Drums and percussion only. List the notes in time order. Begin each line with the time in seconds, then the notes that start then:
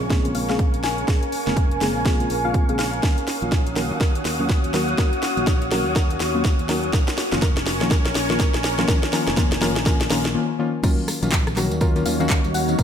0.10 kick, snare, closed hi-hat
0.25 closed hi-hat
0.35 open hi-hat
0.49 snare
0.59 kick, closed hi-hat
0.74 closed hi-hat
0.84 snare, open hi-hat
0.98 closed hi-hat
1.08 kick, snare, closed hi-hat
1.23 closed hi-hat
1.32 open hi-hat
1.47 snare, closed hi-hat
1.57 kick, closed hi-hat
1.71 closed hi-hat
1.81 snare, open hi-hat
2.05 kick, snare, closed hi-hat
2.20 closed hi-hat
2.30 open hi-hat
2.54 kick, closed hi-hat
2.69 closed hi-hat
2.79 snare, open hi-hat
2.93 closed hi-hat
3.03 kick, snare, closed hi-hat
3.18 closed hi-hat
3.27 snare, open hi-hat
3.42 closed hi-hat
3.52 kick, snare, closed hi-hat
3.67 closed hi-hat
3.76 snare, open hi-hat
4.01 kick, snare, closed hi-hat
4.15 closed hi-hat
4.25 snare, open hi-hat
4.49 kick, snare, closed hi-hat
4.64 closed hi-hat
4.74 snare, open hi-hat
4.89 closed hi-hat
4.98 kick, snare, closed hi-hat
5.13 closed hi-hat
5.23 snare, open hi-hat
5.37 closed hi-hat
5.47 kick, snare, closed hi-hat
5.62 closed hi-hat
5.71 snare, open hi-hat
5.96 kick, snare, closed hi-hat
6.10 closed hi-hat
6.20 snare, open hi-hat
6.44 kick, snare, closed hi-hat
6.59 closed hi-hat
6.69 snare, open hi-hat
6.84 closed hi-hat
6.93 kick, snare, closed hi-hat
7.08 snare, closed hi-hat
7.18 snare, open hi-hat
7.32 snare, closed hi-hat
7.42 kick, snare, closed hi-hat
7.57 snare, closed hi-hat
7.66 snare, open hi-hat
7.81 snare
7.91 kick, snare, closed hi-hat
8.06 snare, closed hi-hat
8.15 snare, open hi-hat
8.30 snare
8.40 kick, snare, closed hi-hat
8.54 snare, closed hi-hat
8.64 snare, open hi-hat
8.79 snare, closed hi-hat
8.88 kick, snare, closed hi-hat
9.03 snare, closed hi-hat
9.13 snare, open hi-hat
9.27 snare, closed hi-hat
9.37 kick, snare, closed hi-hat
9.52 snare, closed hi-hat
9.62 snare, open hi-hat
9.76 snare, closed hi-hat
9.86 kick, snare, closed hi-hat
10.01 snare, closed hi-hat
10.10 snare, open hi-hat
10.25 snare, closed hi-hat
10.83 kick, closed hi-hat, crash, tambourine, high conga
10.98 tambourine
11.08 cross-stick, open hi-hat, tambourine, muted conga
11.22 closed hi-hat, tambourine, muted conga, high conga
11.32 kick, clap, closed hi-hat, tambourine
11.47 cross-stick, closed hi-hat, tambourine, low conga
11.56 clap, open hi-hat, tambourine, high conga
11.71 closed hi-hat, tambourine
11.81 kick, closed hi-hat, tambourine
11.96 closed hi-hat, tambourine
12.05 open hi-hat, tambourine, high conga
12.20 closed hi-hat, tambourine, low conga
12.30 kick, clap, closed hi-hat, tambourine
12.44 closed hi-hat, tambourine, high conga
12.54 open hi-hat, tambourine
12.68 closed hi-hat, tambourine, low conga
12.79 kick, closed hi-hat, tambourine, high conga